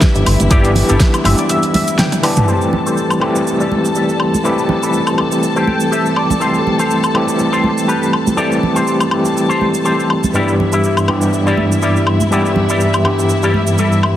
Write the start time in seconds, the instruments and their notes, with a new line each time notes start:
Already playing: tine electric piano E3 G3 B3 D4 G4, string section E4 E5
0.01 kick, snare, closed hi-hat, cabasa
0.15 analog synth bass G1, muted clean electric guitar stroke, closed hi-hat, cabasa
0.26 analog synth bass G1, muted clean electric guitar stroke, open hi-hat, high woodblock
0.40 analog synth bass G1, closed hi-hat, high conga, cabasa
0.50 analog synth bass G1, tine electric piano E3 G3 B3 D4 G4, clean electric guitar E4 G4 D5, kick, closed hi-hat, cabasa
0.64 closed hi-hat, cabasa
0.75 open hi-hat, low conga
0.89 analog synth bass G1, clean electric guitar E4 G4 A4, closed hi-hat, cabasa
1.00 kick, snare, closed hi-hat, cabasa
1.13 muted clean electric guitar stroke, closed hi-hat, cabasa, high woodblock
1.24 analog synth bass G1, tine electric piano E3 G3 B3 D4 G4, clean electric guitar E5, snare, open hi-hat, high conga, high woodblock
1.38 clean electric guitar D5, closed hi-hat, cabasa
1.49 clean electric guitar E5, muted clean electric guitar stroke, closed hi-hat, cabasa
1.63 muted clean electric guitar stroke, closed hi-hat, cabasa
1.74 clean electric guitar E5, open hi-hat, high conga, low conga
1.88 closed hi-hat, cabasa
1.98 clean electric guitar G5, snare, closed hi-hat, high tom, cabasa
2.12 muted clean electric guitar stroke, closed hi-hat, high tom, cabasa
2.23 tine electric piano E3 G3 B3 D4 G4, clean electric guitar A5, muted clean electric guitar stroke, open hi-hat, high woodblock
2.36 closed hi-hat, mid tom, high conga, low conga, cabasa
2.47 tine electric piano E3 G3 A3 C4 G4, clean electric guitar G4 A4 C5, string section A4 A5, cabasa
2.61 cabasa
2.73 low conga
2.86 clean electric guitar G4 A4 C5, cabasa
2.97 cabasa
3.10 cabasa, high woodblock
3.20 tine electric piano E3 G3 A3 C4 G4, high woodblock
3.35 muted clean electric guitar stroke, cabasa
3.46 muted clean electric guitar stroke, cabasa
3.60 clean electric guitar G4 A4 D5, cabasa
3.71 high conga
3.85 cabasa
3.95 clean electric guitar G4 A4 D5, cabasa
4.09 cabasa
4.20 high woodblock
4.34 high conga, cabasa
4.43 tine electric piano E3 G3 A3 C4 G4, clean electric guitar G4 A4 B4, cabasa
4.58 cabasa
4.69 low conga
4.82 clean electric guitar G4 A4 B4, cabasa
4.93 cabasa
5.07 cabasa, high woodblock
5.17 tine electric piano E3 G3 A3 C4 G4, high woodblock
5.32 muted clean electric guitar stroke, cabasa
5.43 muted clean electric guitar stroke, cabasa
5.56 clean electric guitar G4 A4 C5, cabasa
5.67 clean electric guitar G5, high conga
5.80 cabasa
5.91 clean electric guitar G4 A4 C5 E5, cabasa
6.06 cabasa
6.16 clean electric guitar D5, high woodblock
6.30 high conga, low conga, cabasa
6.40 tine electric piano E3 G3 A3 C4 G4, clean electric guitar G4 A4 C5, cabasa
6.54 cabasa
6.67 low conga
6.78 clean electric guitar G4 A4 C5, cabasa
6.90 cabasa
7.04 cabasa, high woodblock
7.14 tine electric piano E3 G3 A3 C4 G4, high woodblock
7.28 muted clean electric guitar stroke, cabasa
7.39 muted clean electric guitar stroke, cabasa
7.52 clean electric guitar G4 A4 C5, cabasa
7.64 high conga
7.78 cabasa
7.88 clean electric guitar G4 A4 B4, cabasa
8.03 cabasa
8.13 high woodblock
8.27 high conga, cabasa
8.37 tine electric piano E3 G3 A3 C4 G4, clean electric guitar G4 A4 D5, cabasa
8.52 cabasa
8.63 low conga
8.75 clean electric guitar G4 A4 C5, cabasa
8.87 cabasa
9.00 cabasa, high woodblock
9.10 tine electric piano E3 G3 A3 C4 G4, high woodblock
9.25 muted clean electric guitar stroke, cabasa
9.36 muted clean electric guitar stroke, cabasa
9.49 clean electric guitar G4 A4 C5, cabasa
9.61 high conga
9.74 cabasa
9.85 clean electric guitar G4 A4 C5, cabasa
10.00 cabasa
10.10 high woodblock
10.24 high conga, low conga, cabasa
10.33 tine electric piano G2 E3 G3 B3 D4 G4, clean electric guitar G3 E4 G4 D5, string section E4 E5, cabasa
10.48 cabasa
10.60 low conga
10.72 clean electric guitar G3 E4 G4 E5, cabasa
10.84 cabasa
10.97 cabasa, high woodblock
11.07 tine electric piano G2 E3 G3 B3 D4 G4, high woodblock
11.21 muted clean electric guitar stroke, cabasa
11.33 muted clean electric guitar stroke, cabasa
11.46 clean electric guitar G3 E4 G4 D5, cabasa
11.57 high conga
11.72 cabasa
11.82 clean electric guitar G3 E4 G4 D5, cabasa
11.96 cabasa
12.07 high woodblock
12.21 high conga, cabasa
12.31 tine electric piano G2 E3 G3 B3 D4 G4, clean electric guitar G3 E4 G4 D5, cabasa
12.46 cabasa
12.56 low conga
12.69 clean electric guitar G3 E4 G4 D5, cabasa
12.80 cabasa
12.94 cabasa, high woodblock
13.04 tine electric piano G2 E3 G3 B3 D4 G4, high woodblock
13.19 muted clean electric guitar stroke, cabasa
13.29 muted clean electric guitar stroke, cabasa
13.43 clean electric guitar G3 E4 G4 D5, cabasa
13.54 high conga
13.67 cabasa
13.78 clean electric guitar G3 E4 G4 A4, cabasa
13.92 cabasa
14.03 high woodblock